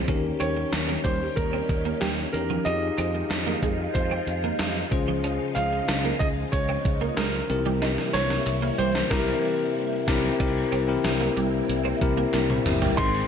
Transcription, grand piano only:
0.40 1.06 C#5 medium
1.04 1.34 C5 medium
1.36 2.03 A#4 medium
2.01 2.08 G4 medium
2.33 2.63 A#4 medium
2.65 3.98 D#5 loud
3.94 4.87 C5 medium
5.55 6.16 F5 loud
6.19 6.27 D#5 medium
6.52 7.13 C#5 medium
7.17 7.62 A#4 medium
8.13 8.80 C#5 loud
8.78 9.12 C5 medium
9.10 9.71 A#4 medium
12.97 13.28 C6 loud

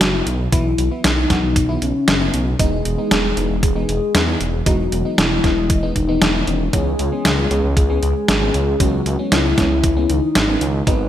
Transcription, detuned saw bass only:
0.01 0.22 F#1 medium
0.27 0.48 B1 loud
0.53 0.74 B1 loud
0.78 0.89 B1 loud
1.04 1.26 B1 medium
1.30 1.41 B1 loud
1.43 1.54 B1 medium
1.56 1.77 B1 loud
1.82 1.93 B1 medium
2.08 2.29 F#1 loud
2.34 2.55 B1 loud
2.59 2.81 E1 loud
2.85 2.96 E1 loud
3.11 3.33 E1 medium
3.37 3.48 E1 loud
3.50 3.61 E1 medium
3.63 3.84 E1 loud
3.89 3.99 E1 medium
4.15 4.36 E2 medium
4.41 4.62 E1 loud
4.66 4.88 E1 loud
4.92 5.03 E1 loud
5.18 5.39 E1 medium
5.44 5.55 E1 loud
5.57 5.68 E1 medium
5.70 5.91 E1 loud
5.96 6.17 E1 medium
6.22 6.43 E1 medium
6.47 6.69 E1 loud
6.73 6.95 C#2 loud
6.99 7.10 C#2 loud
7.25 7.46 C#2 medium
7.51 7.62 C#2 loud
7.64 7.74 C#2 medium
7.77 7.98 C#2 loud
8.03 8.13 C#2 medium
8.29 8.50 G#1 medium
8.54 8.76 C#2 loud
8.80 9.01 C#2 loud
9.06 9.17 C#2 loud
9.32 9.53 C#2 medium
9.58 9.68 C#2 loud
9.71 9.81 C#2 loud
9.84 10.05 C#2 loud
10.10 10.20 C#2 medium
10.35 10.57 G#1 medium
10.61 10.83 C#2 loud
10.87 11.08 G#1 loud

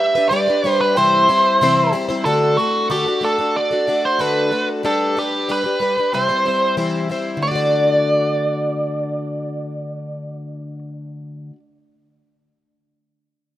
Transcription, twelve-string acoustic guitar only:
0.00 0.15 D4 soft
0.00 0.15 G4 medium
0.00 0.14 B4 medium
0.15 0.30 D4 soft
0.15 0.31 G4 medium
0.15 0.31 B4 medium
0.31 0.46 G3 medium
0.31 0.47 D4 medium
0.31 0.47 G4 medium
0.31 0.47 B4 medium
0.48 0.64 D4 soft
0.48 0.64 G4 soft
0.48 0.63 B4 medium
0.64 0.95 G3 medium
0.64 0.96 D4 medium
0.64 0.96 G4 medium
0.64 0.97 B4 medium
0.96 1.28 C3 medium
0.96 1.28 E3 medium
0.96 1.28 G3 medium
0.96 1.28 C4 medium
0.96 1.29 E4 medium
0.96 1.29 C5 medium
1.29 1.60 G3 medium
1.29 1.60 C4 medium
1.29 1.61 E4 medium
1.29 1.61 C5 medium
1.61 1.92 C3 medium
1.61 1.93 E3 medium
1.61 1.91 G3 medium
1.61 1.92 C4 loud
1.61 1.93 E4 medium
1.61 1.93 C5 medium
1.93 2.08 G3 medium
1.93 2.08 C4 medium
1.93 2.09 E4 medium
1.93 2.07 C5 medium
2.09 2.25 G3 soft
2.09 2.25 C4 medium
2.09 2.25 E4 medium
2.09 2.24 C5 medium
2.26 2.57 D3 medium
2.26 2.56 A3 medium
2.26 2.57 D4 medium
2.26 2.57 F#4 medium
2.26 2.58 A4 medium
2.58 2.89 A3 medium
2.58 2.89 D4 medium
2.58 2.90 F#4 medium
2.58 2.90 A4 medium
2.90 3.05 D3 medium
2.90 3.05 A3 medium
2.90 3.05 D4 medium
2.90 3.06 F#4 medium
2.90 3.05 A4 medium
3.06 3.21 D4 soft
3.06 3.22 F#4 soft
3.06 3.21 A4 medium
3.21 3.37 A3 medium
3.21 3.37 D4 medium
3.21 3.38 F#4 medium
3.21 3.37 A4 medium
3.39 3.71 D4 soft
3.39 3.71 F#4 soft
3.39 3.70 A4 medium
3.71 3.87 D4 soft
3.71 3.87 F#4 soft
3.71 3.86 A4 medium
3.87 4.18 A3 medium
3.87 4.19 D4 medium
3.87 4.20 F#4 medium
3.87 4.20 A4 medium
4.19 4.51 D3 medium
4.19 4.50 A3 medium
4.19 4.51 D4 medium
4.19 4.51 F#4 medium
4.19 4.52 A4 medium
4.51 4.83 A3 medium
4.51 4.83 D4 medium
4.51 4.84 F#4 medium
4.51 4.84 A4 medium
4.83 5.15 G3 medium
4.83 5.16 D4 medium
4.83 5.16 G4 medium
4.83 5.17 B4 medium
5.16 5.48 G3 medium
5.16 5.48 D4 medium
5.16 5.49 G4 medium
5.16 5.49 B4 medium
5.49 5.65 G3 medium
5.49 5.65 D4 medium
5.49 5.65 G4 medium
5.49 5.63 B4 medium
5.64 5.79 D4 soft
5.64 5.80 G4 soft
5.64 5.80 B4 soft
5.80 5.96 G3 medium
5.80 5.97 D4 medium
5.80 5.97 G4 medium
5.80 5.96 B4 medium
5.98 6.14 D4 soft
5.98 6.14 G4 soft
5.98 6.13 B4 soft
6.13 6.29 C3 medium
6.13 6.29 E3 medium
6.13 6.29 G3 medium
6.13 6.29 C4 medium
6.13 6.28 E4 medium
6.13 6.27 C5 medium
6.29 6.44 G3 soft
6.29 6.45 C4 soft
6.29 6.45 E4 medium
6.29 6.45 C5 soft
6.45 6.76 G3 medium
6.45 6.77 C4 medium
6.45 6.77 E4 medium
6.45 6.77 C5 medium
6.77 7.10 C3 medium
6.77 7.10 E3 medium
6.77 7.08 G3 medium
6.77 7.09 C4 medium
6.77 7.10 E4 medium
6.77 7.10 C5 medium
7.09 7.42 G3 medium
7.09 7.43 C4 medium
7.09 7.43 E4 medium
7.09 7.44 C5 medium
7.37 11.50 D3 medium
7.42 11.53 A3 medium
7.47 11.55 D4 medium
7.51 11.57 F#4 medium
7.56 11.59 D5 medium

